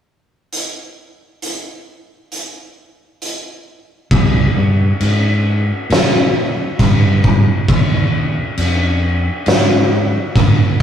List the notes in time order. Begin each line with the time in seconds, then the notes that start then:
0.53 closed hi-hat
1.42 closed hi-hat
2.32 closed hi-hat
3.22 closed hi-hat
4.11 C2, kick, crash
4.55 G2
5.00 G#2, crash
5.90 A#2, snare, crash
6.79 G2, kick, crash
7.24 kick
7.68 D#2, kick, crash
8.58 F2, crash
9.46 G#2, snare, crash
10.36 A#2, kick, crash